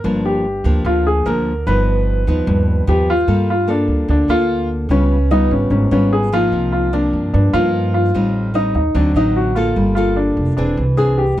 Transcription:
0.04 G1 G2 F3 A#3 D4
0.26 G4
0.64 D2 F3 A#3 D4
0.85 D2 D3 F4
1.07 G#4
1.26 D2 F3 A#3 D4 A#4
1.67 G1 G2 F3 B3 D#4 B4
2.27 D#2 F3 B3 D#4
2.47 D#2 G2
2.87 D#2 F3 B3 D#4 G4
3.10 F4
3.28 G2 G3 A#3 F4 A4
3.50 F4
3.68 A#3 D4 F4 A4
3.88 D2
4.08 D2 D3 D4
4.28 D2 A#3 F4 A4
4.89 C#2 C#3 G3 B3 C#4 F4
5.31 G3 B3 D#4 F4
5.51 G#1 C#4
5.70 G#1 G#2 C#4
5.91 G#1 G3 B3 C#4 F4
6.13 G#4
6.32 F3 A#3 D#4 F4
6.52 C2 C3
6.72 F4
6.93 F3 A#3 D4
7.13 G2
7.34 G2 D4
7.53 G2 F3 A#3 D#4 F4
7.94 F4
8.14 A1 A2 G3 C4 D#4
8.54 G3 C4 D#4
8.74 D#2 D#4
8.95 D2 D3 F#3 C4 D4 D#4
9.14 A1 F#3 C4 D#4
9.36 F#4
9.55 A#3 F4 A4
9.76 G1 G3
9.95 A#3 F4 A4
10.16 D4
10.37 F1
10.57 E1 E3 C4 D4 G#4
10.77 C2
10.97 C4 D4 G#4
11.18 G4

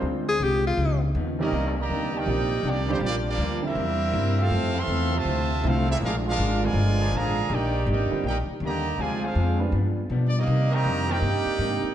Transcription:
Already playing: G#3 D4 F4 C5
0.02 D2 D3 G#3 C4 F4
0.28 G#4
0.40 C2 D3 G#3 C4 F4 G4
0.67 F4
0.77 C#2 C#3 F3 B3 D#4
1.15 D#2 C#3 F3 B3 D#4
1.39 C3 D#3 F3 G3 A#3 C4 C#4 D#4 G4 A#4 D5 D#5
1.52 C2 C3 D#3 A#3 D4
1.76 D#3 G3 A#3
1.81 G4 D5 D#5 A#5
1.89 D2 C3 D#3 A#3
1.93 D4
2.13 D#3 A#3 C4 D4 D#4 G4 A#4
2.17 D#4 A#4 D5 G5
2.26 A#1 C3 D#3 F3 A#3 D#4 G4
2.30 A#3 D4
2.63 C2 C3 D#3 G3 A#3 D4
2.69 A#3 D#4 G4 D5
2.88 D3 D#3 G3 C4 D4 F4 G4
2.93 A#3 D#4 G4 C5
3.00 A#1 G2 F3 A#3 D4
3.05 A#3 D4 F4 G4 D5
3.26 F3 A#3 D4 F4 G4 D5
3.38 D2 G2 F3 A#3 D4
3.62 D3 G3 A#3 C4 E4
3.66 C4 G4 A#4 E5
3.75 E2 C3 G3 A#3 E4
4.12 G2 C3 G3 A#3 E4
4.38 F3 A3 C4 F4 G4 A4
4.43 C4 A4 E5 F5
4.50 F2 F3 A3 C4 E4
4.76 E3 A3 C4 A4 E5 F5 C6
4.88 E2 F3 A3 C4 E4
5.13 C3 F3 A3
5.17 F4 C5 E5 A5
5.25 D2 F3 A3 C4 E4
5.63 C2 D3 F3 G3 A3 C4 E4 F4
5.68 C4 E4 A4 F5
5.87 F3 A3 A#3 C4 D4 E4 G#4
5.91 C4 F4 A4 E5
6.01 A#1 A#2 G#3 D4 F4
6.05 D4 G#4 A#4 F5
6.26 G#3 D4 F4 A#4
6.30 G#4 F5
6.37 G#1 A#2 G#3 D4 F4
6.62 D3 F3 G3 G#3 C4 F4 A#4 D5 G#5
6.74 G1 A#2 G#3 D4
6.79 F4
6.99 F3 A#3 D4 G#4
7.12 A1 A#2 D3 F3 G#3 A#3 D4 F4
7.17 G#4 D5 F5 A#5
7.49 A#1 D#3 A#3 D4 D#4 G4 D5
7.54 D#4 A#4 D5 G5
7.86 G#1 D#3 A#3 D4 D#4 G4
7.92 D#4 A#4 D5 G5
8.11 D3 G3 C4 F4, muted upright bass stroke
8.23 A#1 D#3 A#3 D4 G4 A#4
8.28 D#4 D5 G5
8.47 muted upright bass stroke
8.60 D#2 D3 D#3 G3 A#3 D4 G4
8.65 G4 D5 D#5 A#5
8.98 D2 C3 D3 F3 G#3 C4 D4 F4 G#4 D5
9.02 C5 G#5
9.23 G#3 C4 D4 F4 G#4 C5 F5
9.35 F2 D3 G#3 C4 F4
9.60 G3 B3 D4 F4
9.72 G2 F3 B3 D4
10.10 G2 B2 F3 B3 D4
10.27 D5
10.36 G3 A#3 D#4 G4 D5 D#5
10.47 C3 D#3 A#3 D4
10.70 D#3 G3 A#3 C4 D#4 A#4 D#5
10.74 G4 D5 A#5
10.84 F2 C3 D#3 A#3 D4
11.08 D#3 F3 A#3 C4 D4 D#4 G4 A#4 D5 G5
11.21 G2 C3 D#3 A#3 D4
11.46 muted upright bass stroke
11.59 G#2 C3 D#3 A#3 D4
11.83 muted upright bass stroke

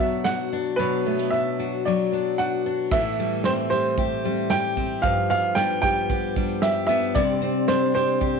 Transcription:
Already playing: B2 F#3 B3 D4 F#4 E5
0.00 B3 D4
0.12 shaker
0.24 D4 F#4 F#5, snare, shaker
0.39 shaker
0.52 B3 D4, shaker
0.66 shaker
0.76 B2 F#3 B4
1.06 A3 B3
1.19 B3
1.30 F#3 D4 E5
1.59 D4 F#4
1.85 F#3 D5
2.12 B3 D4
2.38 D4 F#4 F#5
2.65 B3 D4
2.91 A2 E3 E5, kick, crash
3.18 G3 A3, shaker
3.44 C4 C5, snare, shaker
3.70 G3 G4 C5, shaker
3.98 A3 G4, kick, shaker
4.24 G3 C4, shaker
4.37 shaker
4.50 G4 G5, snare, shaker
4.77 C4, kick, shaker
5.02 G2 F3 F5, kick, shaker
5.30 G3 B3 F5, shaker
5.55 B3 D4 G5, snare, shaker
5.82 G3 G4 G5, kick, shaker
5.96 shaker
6.10 B3 G4, kick, shaker
6.36 G3 D4, kick, shaker
6.49 shaker
6.62 G4 E5, snare, shaker
6.87 B3 D4 E5, snare, shaker
7.03 shaker
7.15 C3 G3 D4 G4 C5 D5, kick, shaker
7.42 C4, shaker
7.68 D4 C5, snare, shaker
7.94 C4 G4 C5, shaker
8.08 shaker
8.21 C4 G4, kick, shaker

